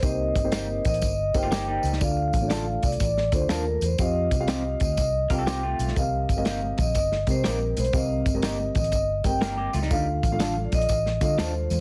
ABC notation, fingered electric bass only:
X:1
M:4/4
L:1/8
Q:"Swing" 1/4=122
K:Cdor
V:1 name="Fingered electric bass" clef=bass
C,, G,,,2 A,,, G,,, G,,,2 _D,, | D,, A,,,2 C,, A,,, D,, E,, =E,, | F,, C,,2 D,, C,, C,,2 =B,,, | C,, G,,,2 B,,, G,,, C, B,,, =B,,, |
C,, G,,,2 A,,, G,,, G,,,2 _D,, | D,, A,,,2 B,,, A,,, D, E,, =E,, |]